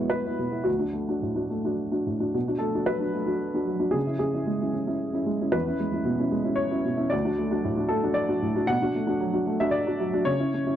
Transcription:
0.00 0.39 B2 soft
0.00 0.70 G#3 soft
0.00 0.27 B3 soft
0.00 0.27 E4 soft
0.00 0.11 C#5 medium
0.10 0.66 B4 medium
0.27 0.39 B3 soft
0.27 0.39 E4 soft
0.39 0.61 B2 soft
0.51 0.65 B3 soft
0.51 0.65 E4 soft
0.64 0.79 D2 soft
0.64 0.78 F#4 soft
0.79 0.92 D4 soft
0.79 0.93 F#4 soft
0.93 1.16 A3 soft
1.09 1.21 D4 soft
1.09 1.21 F#4 soft
1.22 1.45 A2 soft
1.36 1.49 D4 soft
1.36 1.49 F#4 soft
1.50 1.73 A3 soft
1.65 1.90 D4 soft
1.65 1.90 F#4 soft
1.92 2.05 D4 soft
1.92 2.05 F#4 soft
2.06 2.29 A2 soft
2.20 2.33 D4 soft
2.20 2.33 F#4 soft
2.34 2.48 B2 soft
2.48 2.60 D4 soft
2.48 2.60 F#4 soft
2.58 2.82 A3 soft
2.58 2.87 A4 soft
2.75 2.87 D4 soft
2.75 2.87 F#4 soft
2.86 3.10 F#3 soft
2.86 3.94 B4 medium
3.00 3.13 D4 soft
3.00 3.13 F#4 soft
3.13 3.36 A3 soft
3.26 3.51 D4 soft
3.26 3.52 F#4 soft
3.54 3.67 D4 soft
3.54 3.67 F#4 soft
3.67 3.89 F#3 soft
3.80 3.93 D4 soft
3.80 3.93 F#4 soft
3.91 4.07 C#3 soft
3.91 4.18 G#4 medium
4.07 4.19 C#4 soft
4.07 4.20 E4 soft
4.19 4.33 C#4 soft
4.19 5.52 G#4 medium
4.34 4.47 C#4 soft
4.34 4.47 E4 soft
4.47 4.69 G#3 soft
4.61 4.72 C#4 soft
4.61 4.74 E4 soft
4.73 4.85 C#4 soft
4.87 5.11 C#4 soft
4.87 5.11 E4 soft
5.13 5.26 C#4 soft
5.13 5.26 E4 soft
5.26 5.48 G#3 soft
5.41 5.53 C#4 soft
5.41 5.53 E4 soft
5.52 5.67 E2 soft
5.52 6.59 B4 medium
5.67 5.79 C#4 soft
5.67 5.79 E4 soft
5.80 6.01 G#3 soft
5.93 6.05 C#4 soft
5.93 6.05 E4 soft
6.05 6.27 B2 soft
6.20 6.32 C#4 soft
6.20 6.32 E4 soft
6.32 6.54 G#3 soft
6.44 6.69 C#4 soft
6.44 6.69 E4 soft
6.56 7.11 C#5 medium
6.71 6.84 C#4 soft
6.71 6.84 E4 soft
6.85 7.07 B2 soft
6.97 7.10 C#4 soft
6.97 7.10 E4 soft
7.10 7.25 D2 soft
7.10 7.90 D5 medium
7.25 7.37 D4 soft
7.25 7.38 F#4 soft
7.39 7.60 A3 soft
7.51 7.63 D4 soft
7.51 7.64 F#4 soft
7.64 7.86 A2 soft
7.77 7.89 D4 soft
7.77 7.90 F#4 soft
7.88 8.12 A3 soft
7.88 8.16 A4 medium
8.04 8.27 D4 soft
8.04 8.27 F#4 soft
8.14 8.68 D5 medium
8.29 8.41 D4 soft
8.29 8.41 F#4 soft
8.42 8.64 A2 soft
8.56 8.68 D4 soft
8.56 8.68 F#4 soft
8.67 8.82 B2 medium
8.67 9.60 F#5 medium
8.82 8.94 D4 soft
8.82 8.95 F#4 soft
8.95 9.17 A3 soft
9.07 9.20 D4 soft
9.07 9.20 F#4 soft
9.20 9.42 F#3 soft
9.33 9.46 D4 soft
9.33 9.47 F#4 soft
9.47 9.68 A3 soft
9.60 9.85 D4 soft
9.60 9.85 F#4 soft
9.60 9.74 E5 medium
9.71 10.26 D5 medium
9.87 9.99 D4 soft
9.87 9.99 F#4 soft
10.00 10.22 F#3 soft
10.14 10.26 D4 soft
10.14 10.26 F#4 soft
10.25 10.40 C#3 soft
10.25 10.76 C#5 medium
10.40 10.53 C#4 soft
10.40 10.53 E4 soft
10.54 10.65 C#4 soft
10.66 10.76 C#4 soft
10.66 10.76 E4 soft

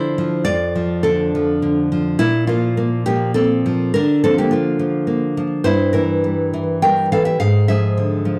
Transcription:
0.00 0.42 D3 medium
0.00 0.17 F3 medium
0.00 0.47 D4 medium
0.00 0.43 E4 medium
0.00 0.44 C5 medium
0.18 0.46 F3 medium
0.45 2.16 F2 medium
0.45 1.00 F4 medium
0.45 1.01 D5 loud
0.75 1.34 F3 medium
1.03 1.61 D3 medium
1.03 1.87 D4 medium
1.03 1.87 A4 medium
1.35 1.91 F3 medium
1.62 2.19 D3 medium
1.92 2.20 F3 medium
2.19 3.92 A#2 medium
2.19 2.46 A#3 medium
2.19 2.47 E4 medium
2.47 3.06 F3 medium
2.47 2.76 A#3 medium
2.47 3.05 F4 medium
2.77 3.06 A#3 medium
3.06 3.65 F3 medium
3.06 3.34 A#3 medium
3.06 3.34 G4 medium
3.34 3.95 A#3 soft
3.34 3.91 C4 medium
3.34 3.92 A4 medium
3.66 3.95 F3 medium
3.94 5.61 D3 medium
3.94 4.23 D4 medium
3.94 4.23 A#4 loud
4.24 4.78 F3 medium
4.24 4.38 C4 medium
4.24 4.38 A4 medium
4.38 4.51 A#3 medium
4.38 4.53 G4 medium
4.51 5.06 A#3 medium
4.51 5.33 F4 medium
4.79 5.36 F3 medium
5.07 5.64 A#3 medium
5.37 5.65 F3 medium
5.64 7.11 G2 medium
5.64 5.92 E4 medium
5.64 5.92 C5 loud
5.93 6.52 E3 medium
5.93 6.79 E4 medium
5.93 6.78 A#4 medium
6.24 6.82 G3 soft
6.54 7.11 E3 medium
6.82 7.39 G3 medium
6.82 7.10 A#4 medium
6.82 7.10 G5 medium
7.12 7.40 E3 medium
7.12 7.25 A4 medium
7.12 7.25 F5 medium
7.25 7.39 G4 medium
7.25 7.39 E5 medium
7.40 8.39 G#2 medium
7.40 7.67 G#4 medium
7.40 7.67 F5 loud
7.68 8.24 F3 medium
7.68 8.39 G#4 medium
7.68 8.39 E5 medium
7.97 8.39 D3 soft
8.25 8.39 F3 soft

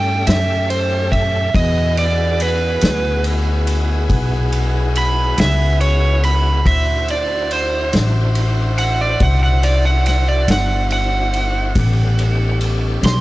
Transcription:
0.00 0.23 G2 medium
0.00 1.50 A3 medium
0.00 1.50 C#4 medium
0.00 1.51 C#4 medium
0.00 1.50 G4 medium
0.00 1.50 A4 medium
0.00 0.25 G5 medium
0.00 1.50 G5 medium
0.27 1.51 F#2 medium
0.27 0.68 E5 medium
0.27 snare loud
0.27 ride medium
0.70 1.11 C5 medium
0.70 ride medium
1.12 1.53 E5 medium
1.12 kick medium
1.12 ride medium
1.54 2.78 E2 medium
1.54 6.61 B3 medium
1.54 6.61 E4 medium
1.54 6.61 F#4 medium
1.54 6.61 G#4 medium
1.54 6.62 G#4 medium
1.54 6.62 B4 medium
1.54 1.96 D#5 loud
1.54 6.62 F#5 medium
1.54 6.62 G#5 medium
1.54 kick loud
1.54 ride medium
1.97 2.39 D5 medium
1.97 ride medium
2.40 3.24 B4 medium
2.40 ride medium
2.81 4.06 D2 medium
2.81 snare loud
2.81 ride medium
3.24 ride medium
3.67 ride medium
4.10 5.34 B1 medium
4.10 kick loud
4.10 ride medium
4.52 ride medium
4.96 5.38 B5 loud
4.96 ride medium
5.38 6.62 C#2 medium
5.38 5.80 E5 medium
5.38 snare loud
5.38 ride medium
5.81 6.22 C#5 medium
5.81 ride medium
6.24 6.65 B5 medium
6.24 ride medium
6.65 7.89 D2 medium
6.65 11.72 D4 medium
6.65 11.72 E4 medium
6.65 11.73 F#4 medium
6.65 11.72 C5 medium
6.65 11.72 E5 medium
6.65 7.08 E5 loud
6.65 11.72 F#5 medium
6.65 11.72 C6 medium
6.65 kick loud
6.65 ride medium
7.08 7.51 D5 medium
7.08 ride medium
7.51 7.93 C5 loud
7.51 ride medium
7.93 9.17 A1 medium
7.93 snare medium
7.93 ride medium
8.35 ride medium
8.78 8.99 F#5 loud
8.78 ride medium
9.01 9.21 D5 medium
9.20 10.45 C2 medium
9.20 9.42 F#5 loud
9.20 kick loud
9.20 ride medium
9.43 9.63 F#5 loud
9.63 9.84 D5 medium
9.63 ride medium
9.85 10.06 F#5 medium
10.06 10.27 F#5 loud
10.06 snare soft
10.06 ride medium
10.28 10.48 D5 medium
10.48 11.72 G1 medium
10.48 10.91 F#5 medium
10.48 snare loud
10.48 ride medium
10.90 12.58 F#5 loud
10.90 ride medium
11.33 ride medium
11.75 13.00 A1 medium
11.75 13.21 G3 medium
11.75 13.21 B3 medium
11.75 13.21 C#4 medium
11.75 13.21 G4 medium
11.75 13.21 A4 medium
11.75 kick loud
11.75 ride medium
12.19 ride medium
12.61 ride medium
13.03 13.21 B1 loud
13.03 13.21 C6 medium
13.03 snare loud
13.03 ride medium

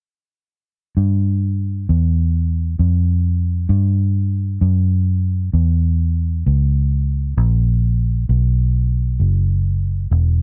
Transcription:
0.97 1.85 G2 medium
1.89 2.77 E2 medium
2.79 3.68 F2 medium
3.69 4.59 G2 medium
4.61 5.51 F#2 medium
5.53 6.42 E2 medium
6.46 7.35 C#2 medium
7.37 8.26 A#1 medium
8.29 9.17 B1 medium
9.20 10.08 F#1 medium
10.11 10.42 E1 medium

